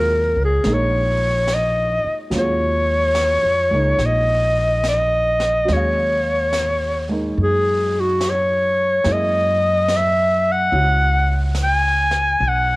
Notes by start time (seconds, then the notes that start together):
Already playing: D#2 F#3 G#3 C#4 F4 A#4
0.36 C#2
0.45 G#4
0.64 A#1 G#3 A#3 D#4, brush sweep, snare
0.73 C#5
1.48 snare, hi-hat pedal
1.54 D#5
2.04 muted upright bass stroke
2.30 D#2 F#3 G#3 C#4, brush sweep, snare
2.35 F4 C#5
3.15 snare, hi-hat pedal
3.43 F2
3.71 C#2 G#3 A#3 D#4
3.98 A#1, brush sweep, snare
4.06 D#5
4.84 snare, hi-hat pedal
4.89 D#5
5.40 snare
5.65 D#2 F#3 G#3, brush sweep, snare
5.72 C#4 C#5
5.76 F5
6.53 snare, hi-hat pedal
7.09 G#3 A#3 D#4
7.37 F#2, brush sweep
7.43 G#4
8.00 F#4
8.21 snare, hi-hat pedal
8.30 C#5
9.04 F#2 G#3 A#3 E4, brush sweep, snare
9.12 D#5
9.88 snare, hi-hat pedal
9.96 E5
10.52 F#5
10.71 C#2 C#4 E4 F#4, brush sweep
11.55 snare, hi-hat pedal
11.63 G#5
12.11 snare
12.39 B1, brush sweep
12.48 F#5